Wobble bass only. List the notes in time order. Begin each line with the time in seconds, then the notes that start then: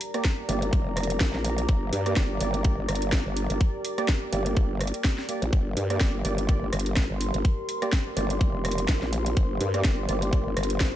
0.49 G1
0.73 F1
1.21 A1
1.34 A#1
1.69 G1
1.93 G2
2.17 G1
2.40 G1
2.78 G1
2.88 G1
3.26 G1
3.50 G1
4.33 G1
4.57 G1
5.42 A#1
5.53 G1
5.77 G2
6.01 G1
6.25 G1
6.62 G1
6.73 G1
7.10 G1
7.34 G1
8.17 G1
8.41 F1
8.89 A1
9.02 A#1
9.37 G1
9.61 G2
9.85 G1
10.09 G1
10.46 G1
10.57 G1